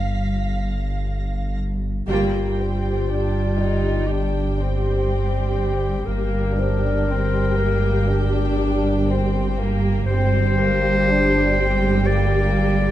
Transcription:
0.00 1.84 G1 soft
0.00 2.02 G1 soft
0.00 1.84 G2 soft
0.00 1.54 F4 soft
0.00 1.57 F5 soft
0.00 1.55 A#6 soft
0.00 0.55 B6 soft
2.07 6.03 G1 medium
2.07 6.04 G1 soft
2.07 6.03 G2 soft
2.07 6.03 G3 soft
2.07 2.55 A#3 soft
2.07 4.09 F4 medium
2.07 6.03 G4 soft
2.07 6.04 G5 soft
2.58 3.08 C4 soft
3.09 3.58 D4 soft
3.57 4.08 D#4 soft
3.57 6.53 D5 soft
4.07 4.58 D4 soft
4.07 6.07 G4 soft
4.59 6.08 C4 soft
6.06 10.03 G1 soft
6.06 10.03 G1 medium
6.06 10.03 G2 soft
6.06 10.03 G3 soft
6.06 6.57 A#3 soft
6.06 10.03 G4 soft
6.06 9.57 A#4 medium
6.06 10.04 G5 soft
6.58 7.08 D4 soft
6.58 9.54 C5 soft
7.08 7.58 C4 soft
7.57 8.07 A#3 soft
8.08 9.08 D4 medium
9.09 9.58 C4 soft
9.58 10.08 A#3 soft
10.05 12.91 G1 medium
10.05 12.91 G2 soft
10.05 12.91 G3 soft
10.05 12.91 G4 medium
10.05 12.08 C5 loud
10.05 12.91 G5 soft
10.10 10.58 C4 soft
10.60 11.08 A#3 soft
11.09 11.58 D4 medium
11.60 12.09 C4 soft
12.06 12.91 A#3 soft
12.06 12.91 D5 medium

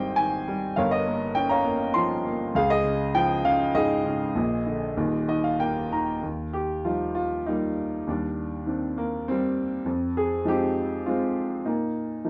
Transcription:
0.00 0.73 G#1 medium
0.00 0.73 G#2 medium
0.00 0.48 G3 medium
0.00 0.74 C4 medium
0.00 0.78 D#4 medium
0.00 0.78 G4 medium
0.00 0.79 C5 medium
0.00 0.79 D#5 medium
0.00 0.13 G5 medium
0.16 0.76 D#3 medium
0.16 0.45 G#5 medium
0.48 0.76 G3 medium
0.76 2.51 G1 medium
0.76 2.51 G2 medium
0.76 0.92 A#4 medium
0.76 1.49 C#5 medium
0.76 0.92 F5 medium
0.91 1.77 A#4 medium
0.91 1.37 D#5 medium
1.07 1.64 A#3 medium
1.35 2.51 C#4 medium
1.35 1.51 G5 medium
1.49 2.36 C#5 medium
1.49 2.36 F5 medium
1.49 1.91 A#5 medium
1.66 2.24 A#3 medium
1.94 2.53 F3 medium
1.94 2.22 C6 medium
2.26 2.54 A#3 medium
2.55 4.31 C#2 medium
2.55 2.69 G#4 medium
2.55 2.69 F5 medium
2.70 3.56 G#4 medium
2.70 3.11 D#5 medium
2.85 3.43 C#3 medium
3.15 4.31 F3 medium
3.15 3.45 G5 loud
3.45 4.04 C#3 medium
3.45 3.72 F5 loud
3.75 4.33 G#2 medium
3.75 5.89 G#4 medium
3.75 5.27 D#5 medium
4.05 4.34 C#3 medium
4.35 4.93 A#1 medium
4.35 4.95 A#2 medium
4.66 4.96 D3 medium
4.97 6.20 D#1 medium
4.97 6.20 D#2 medium
5.28 5.91 D#3 soft
5.28 5.43 D#5 medium
5.44 5.59 F5 medium
5.60 6.21 A#3 medium
5.60 5.90 G5 medium
5.92 6.23 D#3 medium
5.92 6.22 A#5 medium
6.23 8.03 D#2 soft
6.53 6.85 G4 medium
6.84 8.04 F3 soft
6.84 7.47 G3 soft
6.84 7.45 D#4 soft
6.84 7.13 F4 medium
7.15 7.44 F4 medium
7.47 8.05 G3 medium
7.47 8.05 A#3 soft
7.47 8.09 D#4 medium
8.07 9.82 D#2 medium
8.07 8.95 G3 soft
8.07 8.64 D4 medium
8.66 9.82 D#3 soft
8.66 9.27 C4 soft
8.66 9.83 D4 soft
8.98 9.28 A#3 medium
9.28 9.84 G3 medium
9.28 9.69 C4 medium
9.86 11.61 F2 medium
10.17 10.44 G#4 medium
10.45 11.61 F3 soft
10.45 11.06 G#3 soft
10.45 10.48 D#4 soft
10.45 11.08 G4 medium
10.49 11.07 C4 medium
10.49 11.33 D#4 medium
11.06 11.62 G#3 soft
11.06 11.62 C4 medium
11.06 11.61 F4 medium
11.65 12.30 A#2 medium
11.65 12.23 A#3 soft
11.65 12.21 D#4 medium
12.24 12.30 F3 soft
12.24 12.30 A#3 soft
12.24 12.30 D#4 soft

